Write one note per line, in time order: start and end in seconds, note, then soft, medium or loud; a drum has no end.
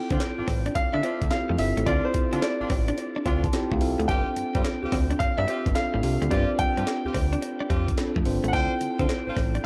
0.00 0.67 C4 medium
0.00 0.67 E4 medium
0.00 0.67 F4 medium
0.00 0.67 A4 medium
0.00 0.71 G5 loud
0.10 0.18 D3 loud
0.10 0.22 C4 medium
0.10 0.18 C4 medium
0.10 0.23 D4 medium
0.10 0.23 F4 medium
0.10 kick medium
0.10 closed hi-hat medium
0.20 muted clean electric guitar stroke soft
0.20 snare loud
0.20 clap medium
0.20 closed hi-hat medium
0.20 cowbell medium
0.38 0.42 A1 medium
0.38 0.50 C4 medium
0.38 0.50 D4 medium
0.38 0.50 F4 medium
0.48 0.70 A1 medium
0.48 0.62 C4 medium
0.48 kick loud
0.48 snare medium
0.48 open hi-hat medium
0.48 cowbell medium
0.66 0.73 D4 medium
0.66 closed hi-hat medium
0.75 0.83 D3 medium
0.75 0.94 F5 loud
0.75 muted clean electric guitar stroke soft
0.75 kick medium
0.75 closed hi-hat medium
0.75 cowbell medium
0.93 1.02 D3 loud
0.93 1.01 D4 medium
0.93 1.32 E5 loud
1.03 1.23 C4 medium
1.03 1.17 C4 medium
1.03 1.23 D4 medium
1.03 1.23 F4 medium
1.03 closed hi-hat medium
1.03 cowbell medium
1.22 1.29 D2 medium
1.22 kick medium
1.22 closed hi-hat soft
1.31 1.57 C4 medium
1.31 1.57 E4 medium
1.31 1.57 F4 medium
1.31 1.57 G4 medium
1.31 1.59 F5 medium
1.31 snare loud
1.31 clap medium
1.31 closed hi-hat medium
1.31 cowbell medium
1.49 1.57 F2 medium
1.49 1.57 A3 medium
1.58 1.74 G1 medium
1.58 1.84 C4 medium
1.58 1.85 E4 medium
1.58 1.85 F4 medium
1.58 1.85 A4 medium
1.58 1.85 E5 medium
1.58 muted clean electric guitar stroke soft
1.58 open hi-hat medium
1.77 1.85 A1 medium
1.77 1.84 A3 medium
1.77 closed hi-hat medium
1.86 2.01 D2 loud
1.86 2.06 C4 loud
1.86 2.89 C4 medium
1.86 2.06 D4 medium
1.86 2.00 D4 medium
1.86 2.89 E4 medium
1.86 2.06 F4 loud
1.86 2.89 F4 medium
1.86 2.89 A4 medium
1.86 2.05 D5 medium
1.86 kick loud
1.86 closed hi-hat medium
1.86 cowbell medium
2.05 2.43 C5 medium
2.14 2.22 D3 soft
2.14 muted clean electric guitar stroke soft
2.14 kick loud
2.14 closed hi-hat medium
2.32 2.40 D3 medium
2.32 2.45 C4 medium
2.32 2.40 C4 medium
2.32 2.45 D4 medium
2.32 2.45 F4 medium
2.32 closed hi-hat medium
2.42 3.49 D5 medium
2.42 muted clean electric guitar stroke soft
2.42 snare loud
2.42 clap medium
2.42 closed hi-hat medium
2.42 cowbell medium
2.60 2.64 A1 soft
2.60 2.72 C4 medium
2.60 2.73 D4 medium
2.60 2.73 F4 medium
2.70 2.92 A1 medium
2.70 2.84 C4 medium
2.70 kick loud
2.70 open hi-hat medium
2.70 cowbell medium
2.88 2.96 D4 medium
2.88 closed hi-hat soft
2.98 muted clean electric guitar stroke soft
2.98 closed hi-hat medium
2.98 cowbell medium
3.16 3.23 D4 medium
3.25 3.48 D2 medium
3.25 3.45 C4 medium
3.25 3.40 C4 medium
3.25 3.45 D4 medium
3.25 3.45 F4 medium
3.25 3.43 C6 medium
3.25 kick medium
3.25 closed hi-hat medium
3.25 cowbell medium
3.44 3.53 A5 medium
3.44 kick medium
3.44 closed hi-hat medium
3.53 3.79 C4 medium
3.53 3.79 E4 medium
3.53 3.79 F4 medium
3.53 3.79 G4 medium
3.53 3.71 G5 medium
3.53 snare loud
3.53 clap medium
3.53 closed hi-hat medium
3.53 cowbell medium
3.72 3.79 D2 medium
3.72 3.79 A3 medium
3.72 3.80 F5 medium
3.72 kick medium
3.80 3.96 C2 medium
3.80 4.06 C4 medium
3.80 4.07 E4 medium
3.80 4.07 F4 medium
3.80 4.07 A4 medium
3.80 4.07 F5 medium
3.80 muted clean electric guitar stroke soft
3.80 open hi-hat medium
3.99 4.07 D2 medium
3.99 4.07 A3 medium
3.99 closed hi-hat medium
4.08 4.24 G1 loud
4.08 4.23 G3 medium
4.08 5.11 C4 medium
4.08 4.29 C4 medium
4.08 4.29 F4 medium
4.08 5.11 F4 medium
4.08 4.29 G4 loud
4.08 5.12 A4 medium
4.08 5.23 G5 loud
4.08 kick loud
4.08 closed hi-hat medium
4.08 cowbell medium
4.36 4.44 G2 soft
4.36 muted clean electric guitar stroke soft
4.36 closed hi-hat medium
4.55 4.63 G2 medium
4.55 4.67 C4 medium
4.55 4.62 C4 medium
4.55 4.67 F4 medium
4.55 4.67 G4 medium
4.55 kick medium
4.55 closed hi-hat medium
4.64 muted clean electric guitar stroke soft
4.64 snare loud
4.64 clap medium
4.64 closed hi-hat medium
4.64 cowbell medium
4.82 4.87 D2 medium
4.82 4.95 C4 medium
4.82 4.95 F4 medium
4.82 4.95 G4 medium
4.92 5.14 D2 medium
4.92 5.06 C4 medium
4.92 kick medium
4.92 snare medium
4.92 open hi-hat medium
4.92 cowbell medium
5.11 5.18 D4 medium
5.11 closed hi-hat soft
5.19 5.27 G2 soft
5.19 5.39 F5 loud
5.19 muted clean electric guitar stroke soft
5.19 kick medium
5.19 closed hi-hat medium
5.19 cowbell medium
5.38 5.46 G2 medium
5.38 5.46 D4 medium
5.38 5.76 E5 loud
5.48 5.67 C4 medium
5.48 5.62 C4 medium
5.48 5.67 F4 medium
5.48 5.68 G4 medium
5.48 closed hi-hat medium
5.48 cowbell medium
5.66 5.74 G1 medium
5.66 kick loud
5.66 closed hi-hat medium
5.75 6.01 C4 medium
5.75 6.01 D4 medium
5.75 6.02 F4 medium
5.75 6.02 A4 medium
5.75 6.33 F5 medium
5.75 snare loud
5.75 clap medium
5.75 closed hi-hat medium
5.75 cowbell medium
5.94 6.02 A1 medium
5.94 6.01 A3 medium
6.03 6.18 C2 medium
6.03 6.29 C4 medium
6.03 6.29 D4 medium
6.03 6.29 F4 medium
6.03 6.29 G4 medium
6.03 muted clean electric guitar stroke soft
6.03 open hi-hat medium
6.22 6.29 D2 medium
6.22 6.29 A3 medium
6.22 closed hi-hat medium
6.31 6.46 G1 loud
6.31 6.45 G3 medium
6.31 7.33 C4 medium
6.31 6.51 C4 loud
6.31 7.34 D4 medium
6.31 6.51 F4 medium
6.31 7.34 F4 medium
6.31 6.51 G4 loud
6.31 7.34 B4 medium
6.31 6.60 D5 medium
6.31 kick loud
6.31 closed hi-hat medium
6.31 cowbell medium
6.59 6.66 G2 soft
6.59 8.22 G5 loud
6.59 muted clean electric guitar stroke soft
6.59 kick medium
6.59 closed hi-hat medium
6.77 6.85 G2 medium
6.77 6.89 C4 medium
6.77 6.84 C4 medium
6.77 6.89 F4 medium
6.77 6.89 G4 medium
6.77 closed hi-hat medium
6.87 muted clean electric guitar stroke soft
6.87 snare loud
6.87 clap medium
6.87 closed hi-hat medium
6.87 cowbell medium
7.05 7.09 D2 medium
7.05 7.17 C4 medium
7.05 7.17 F4 medium
7.05 7.17 G4 medium
7.14 7.37 D2 medium
7.14 7.28 C4 medium
7.14 kick medium
7.14 open hi-hat medium
7.14 cowbell medium
7.33 7.40 D4 medium
7.33 closed hi-hat soft
7.42 muted clean electric guitar stroke soft
7.42 closed hi-hat medium
7.42 cowbell medium
7.60 7.68 D4 medium
7.70 7.92 F2 medium
7.70 7.90 C4 medium
7.70 7.84 C4 medium
7.70 7.90 F4 medium
7.70 7.90 G4 medium
7.70 kick medium
7.70 closed hi-hat medium
7.70 cowbell medium
7.88 kick medium
7.88 closed hi-hat medium
7.97 8.23 C4 medium
7.97 8.24 D4 medium
7.97 8.24 F4 medium
7.97 8.24 A4 medium
7.97 snare loud
7.97 clap medium
7.97 closed hi-hat medium
7.97 cowbell medium
8.16 8.24 F2 medium
8.16 8.23 A3 medium
8.16 kick medium
8.25 8.40 G1 medium
8.25 8.51 C4 medium
8.25 8.51 D4 medium
8.25 8.51 F4 medium
8.25 8.52 C5 loud
8.25 muted clean electric guitar stroke soft
8.25 open hi-hat medium
8.44 8.51 A1 medium
8.44 8.51 A3 medium
8.44 closed hi-hat medium
8.48 8.53 F#5 medium
8.53 8.68 D2 loud
8.53 9.55 C4 medium
8.53 8.73 D4 medium
8.53 8.67 D4 medium
8.53 9.56 E4 medium
8.53 8.73 F4 medium
8.53 9.56 F4 medium
8.53 9.56 A4 medium
8.53 8.73 C5 loud
8.53 9.66 G5 loud
8.53 kick loud
8.53 closed hi-hat medium
8.53 cowbell medium
8.81 8.88 D3 soft
8.81 muted clean electric guitar stroke soft
8.81 closed hi-hat medium
8.99 9.07 D3 medium
8.99 9.07 C4 medium
8.99 9.11 D4 medium
8.99 9.11 F4 medium
8.99 9.12 C5 medium
8.99 kick medium
8.99 closed hi-hat medium
9.09 muted clean electric guitar stroke soft
9.09 snare loud
9.09 clap medium
9.09 closed hi-hat medium
9.09 cowbell medium
9.27 9.31 A1 soft
9.27 9.39 D4 medium
9.27 9.39 F4 medium
9.27 9.39 C5 medium
9.37 9.59 A1 medium
9.37 9.51 C4 medium
9.37 kick loud
9.37 snare medium
9.37 open hi-hat medium
9.37 cowbell medium
9.55 9.62 D4 medium
9.55 closed hi-hat soft